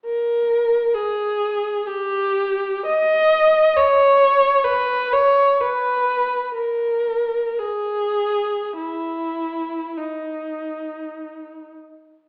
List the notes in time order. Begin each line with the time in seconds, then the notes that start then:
0.05 A#4
0.94 G#4
1.87 G4
2.86 D#5
3.76 C#5
4.64 B4
5.13 C#5
5.61 B4
6.55 A#4
7.59 G#4
8.77 E4
9.98 D#4